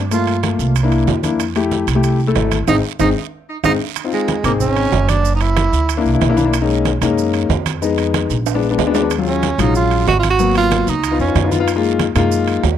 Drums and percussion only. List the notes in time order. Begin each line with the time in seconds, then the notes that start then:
0.11 high conga, high timbale, long guiro, maracas
0.27 high conga, high timbale, maracas
0.43 high conga, high timbale, low timbale, short guiro, maracas
0.59 high conga, short guiro, maracas
0.75 high conga, high timbale, long guiro, maracas
0.92 high conga, high timbale, maracas
1.07 high conga, low timbale, short guiro, maracas
1.23 high conga, high timbale, short guiro, maracas
1.39 high conga, high timbale, long guiro, maracas
1.56 high conga, high timbale, maracas
1.71 high conga, low timbale, short guiro, maracas
1.87 high conga, high timbale, short guiro, maracas
2.03 high timbale, long guiro, maracas
2.20 high conga, maracas
2.35 high conga, high timbale, low timbale, short guiro, maracas
2.51 high conga, high timbale, short guiro, maracas
2.67 high conga, high timbale, long guiro, maracas
2.99 high conga, high timbale, long guiro, maracas
3.64 high conga, high timbale, long guiro, maracas
3.96 high conga, high timbale, long guiro, maracas
4.12 high conga, maracas
4.28 high conga, high timbale, low timbale, short guiro, maracas
4.44 high conga, low conga, high timbale, short guiro, maracas
4.60 high conga, low conga, long guiro, maracas
4.76 high conga, high timbale, maracas
4.92 high conga, low timbale, short guiro, maracas
5.09 high conga, high timbale, short guiro, maracas
5.25 high conga, long guiro, maracas
5.41 high conga, high timbale, maracas
5.57 high conga, high timbale, low timbale, short guiro, maracas
5.73 short guiro, maracas
5.89 high conga, high timbale, long guiro, maracas
6.05 high conga, maracas
6.21 high conga, high timbale, low timbale, short guiro, maracas
6.37 high conga, short guiro, maracas
6.53 high timbale, long guiro, maracas
6.69 high conga, maracas
6.85 high conga, high timbale, low timbale, short guiro, maracas
7.02 high conga, low conga, high timbale, short guiro, maracas
7.18 long guiro, maracas
7.34 high conga, high timbale, maracas
7.50 high conga, low timbale, short guiro, maracas
7.66 high conga, high timbale, short guiro, maracas
7.82 high conga, long guiro, maracas
7.98 high conga, high timbale, maracas
8.14 high conga, high timbale, low timbale, short guiro, maracas
8.30 high conga, short guiro, maracas
8.46 high conga, high timbale, long guiro, maracas
8.62 high conga, maracas
8.79 high conga, low timbale, short guiro, maracas
8.94 low timbale, short guiro, maracas
9.10 high conga, high timbale, long guiro, maracas
9.26 high conga, maracas
9.43 high conga, high timbale, low timbale, short guiro, maracas
9.59 high conga, low conga, high timbale, short guiro, maracas
9.75 high conga, long guiro, maracas
9.91 high conga, high timbale, maracas
10.07 high conga, low timbale, short guiro, maracas
10.23 high conga, high timbale, short guiro, maracas
10.39 long guiro, maracas
10.55 high conga, high timbale, maracas
10.71 high conga, high timbale, low timbale, short guiro, maracas
10.87 high conga, short guiro, maracas
11.03 high conga, high timbale, long guiro, maracas
11.19 high conga, maracas
11.35 high conga, high timbale, low timbale, short guiro, maracas
11.51 high conga, short guiro, maracas
11.68 high conga, high timbale, long guiro, maracas
11.83 high conga, maracas
11.99 high conga, high timbale, low timbale, short guiro, maracas
12.15 high conga, low conga, high timbale, short guiro, maracas
12.32 high conga, long guiro, maracas
12.48 high conga, high timbale, maracas
12.63 high conga, low timbale, short guiro, maracas